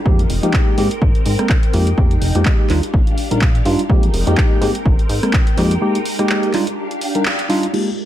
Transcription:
0.05 0.25 F2 loud
0.05 0.21 G#3 medium
0.05 0.77 G#3 medium
0.05 0.21 A#3 medium
0.05 0.21 D#4 medium
0.05 0.77 D#4 medium
0.05 0.21 G4 loud
0.05 2.67 A#4 medium
0.05 2.67 G5 loud
0.05 kick loud
0.19 closed hi-hat soft
0.30 0.40 F1 medium
0.30 open hi-hat loud
0.42 0.52 F2 medium
0.42 0.75 G#3 loud
0.42 0.75 A#3 medium
0.42 0.75 D#4 medium
0.42 0.75 G4 loud
0.42 closed hi-hat medium
0.54 kick loud
0.54 clap loud
0.77 0.88 G#2 medium
0.77 0.87 G#3 medium
0.77 0.87 A#3 medium
0.77 1.73 C4 medium
0.77 0.88 C4 medium
0.77 0.88 G4 loud
0.77 open hi-hat medium
0.91 closed hi-hat medium
1.02 1.12 G#1 loud
1.02 kick loud
1.15 closed hi-hat soft
1.26 1.36 G#2 medium
1.26 open hi-hat loud
1.39 1.47 G#3 medium
1.39 1.47 A#3 medium
1.39 1.47 C4 medium
1.39 1.47 A#4 medium
1.39 cross-stick medium
1.39 closed hi-hat medium
1.49 kick loud
1.49 clap loud
1.63 closed hi-hat soft
1.73 1.93 F2 loud
1.73 1.89 G#3 medium
1.73 2.69 G#3 medium
1.73 1.89 A#3 medium
1.73 2.69 D#4 medium
1.73 1.89 D#4 medium
1.73 1.89 G4 loud
1.73 open hi-hat medium
1.87 closed hi-hat medium
1.97 2.17 F2 loud
1.97 2.13 G#3 loud
1.97 2.13 A#3 medium
1.97 2.13 D#4 medium
1.97 2.13 G4 loud
1.97 kick loud
2.11 closed hi-hat medium
2.22 2.32 F1 medium
2.22 open hi-hat loud
2.35 2.43 F2 medium
2.35 2.67 G#3 loud
2.35 2.67 A#3 medium
2.35 2.67 D#4 medium
2.35 2.67 G4 loud
2.35 closed hi-hat medium
2.46 kick loud
2.46 clap loud
2.69 2.80 D#2 medium
2.69 2.79 G3 medium
2.69 3.88 D4 medium
2.69 2.79 D4 medium
2.69 2.80 D#4 medium
2.69 2.80 F4 medium
2.69 3.88 G4 medium
2.69 3.88 F5 medium
2.69 clap soft
2.69 open hi-hat medium
2.83 closed hi-hat medium
2.94 3.04 A#1 medium
2.94 kick loud
3.07 closed hi-hat soft
3.18 open hi-hat loud
3.31 3.62 A#1 medium
3.31 3.39 G3 medium
3.31 3.39 D4 medium
3.31 3.39 D#4 medium
3.31 3.39 A#4 medium
3.31 closed hi-hat medium
3.42 kick loud
3.42 clap loud
3.55 closed hi-hat medium
3.65 3.76 G2 medium
3.65 3.81 G3 loud
3.65 3.81 D4 medium
3.65 3.81 D#4 medium
3.65 3.81 F4 loud
3.65 open hi-hat medium
3.79 closed hi-hat medium
3.89 4.09 F2 loud
3.89 4.05 G#3 medium
3.89 4.61 G#3 medium
3.89 4.05 A#3 medium
3.89 4.61 D#4 medium
3.89 4.05 D#4 medium
3.89 4.05 G4 loud
3.89 5.56 A#4 medium
3.89 4.60 G5 medium
3.89 kick loud
4.03 closed hi-hat medium
4.13 4.24 F1 medium
4.13 open hi-hat loud
4.27 4.35 F2 medium
4.27 4.59 G#3 loud
4.27 4.59 A#3 medium
4.27 4.59 D#4 medium
4.27 4.59 G4 loud
4.27 closed hi-hat medium
4.38 kick loud
4.38 clap loud
4.61 4.72 G#2 medium
4.61 4.71 G#3 medium
4.61 4.71 A#3 medium
4.61 5.57 C4 medium
4.61 4.72 C4 medium
4.61 4.72 G4 medium
4.61 6.52 G5 medium
4.61 open hi-hat medium
4.75 closed hi-hat medium
4.85 4.96 G#1 loud
4.85 kick loud
4.99 closed hi-hat soft
5.09 5.20 G#2 medium
5.09 open hi-hat loud
5.23 5.31 G#3 medium
5.23 5.31 A#3 medium
5.23 5.31 C4 medium
5.23 5.31 A#4 medium
5.23 cross-stick medium
5.23 closed hi-hat medium
5.33 kick loud
5.33 clap loud
5.47 closed hi-hat medium
5.57 5.77 F2 loud
5.57 5.73 G#3 loud
5.57 6.53 G#3 medium
5.57 5.73 A#3 medium
5.57 5.73 D#4 medium
5.57 6.53 D#4 medium
5.57 5.73 G4 loud
5.57 6.53 A#4 medium
5.57 open hi-hat medium
5.71 closed hi-hat medium
5.81 5.97 G#3 loud
5.81 5.97 A#3 medium
5.81 5.97 D#4 medium
5.81 5.97 G4 loud
5.95 closed hi-hat medium
6.05 open hi-hat loud
6.19 6.51 G#3 loud
6.19 6.51 A#3 medium
6.19 6.51 D#4 medium
6.19 6.51 G4 loud
6.19 cross-stick medium
6.19 closed hi-hat medium
6.29 clap loud
6.43 closed hi-hat soft
6.53 6.63 G3 medium
6.53 7.72 D4 medium
6.53 6.64 D4 medium
6.53 6.64 D#4 medium
6.53 6.64 F4 medium
6.53 7.72 G4 medium
6.53 7.72 F5 medium
6.53 clap soft
6.53 open hi-hat medium
6.67 closed hi-hat medium
6.91 closed hi-hat soft
7.01 open hi-hat loud
7.15 7.23 G3 medium
7.15 7.23 D4 medium
7.15 7.23 D#4 medium
7.15 7.23 A#4 medium
7.15 closed hi-hat medium
7.26 clap loud
7.39 closed hi-hat medium
7.49 7.65 G3 loud
7.49 7.65 D4 medium
7.49 7.65 D#4 medium
7.49 7.65 F4 loud
7.49 open hi-hat medium
7.63 closed hi-hat medium
7.73 7.89 G#3 medium
7.73 8.05 G#3 medium
7.73 7.89 A#3 medium
7.73 7.89 D#4 medium
7.73 8.05 D#4 medium
7.73 7.89 F4 medium
7.73 7.89 G4 loud
7.73 8.05 G4 medium
7.73 8.05 A#4 medium
7.73 8.05 F5 medium
7.73 crash medium

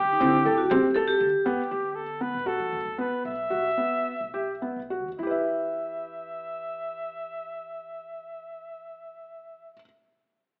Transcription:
0.00 0.18 D3 medium
0.00 0.92 G4 medium
0.12 0.20 D#4 medium
0.20 0.43 D3 loud
0.20 0.35 C4 medium
0.20 0.58 E4 medium
0.45 0.68 D2 medium
0.45 0.60 A4 medium
0.45 frame drum soft
0.58 0.70 F#4 medium
0.70 0.85 C4 medium
0.70 0.96 G4 loud
0.70 frame drum medium
0.94 1.06 A4 loud
0.94 1.25 A4 medium
0.94 frame drum soft
1.08 1.43 G4 loud
1.20 1.32 D3 medium
1.46 1.57 E2 medium
1.46 1.60 B3 medium
1.46 1.97 G4 medium
1.71 2.35 D3 medium
1.71 2.01 G4 medium
1.95 2.23 A4 medium
2.21 2.36 B3 medium
2.21 2.48 B4 medium
2.34 2.57 B1 medium
2.46 2.77 F#4 medium
2.46 2.98 A4 medium
2.60 2.71 E3 medium
2.73 2.84 E2 medium
2.85 3.09 E2 medium
2.98 3.30 B3 medium
2.98 3.23 B4 medium
3.25 3.49 B1 medium
3.25 4.86 E5 medium
3.50 3.76 B1 medium
3.50 3.66 F#4 medium
3.77 4.10 B3 soft
4.20 4.72 B1 medium
4.34 4.50 G4 medium
4.62 4.79 B3 soft
4.76 5.06 B1 medium
4.90 5.07 F#4 medium
5.06 5.18 E2 medium
5.19 9.73 E2 medium
5.19 9.72 E4 soft
5.19 9.72 E5 medium
5.23 9.76 G4 soft
5.23 9.80 B4 medium
5.31 9.84 E5 soft

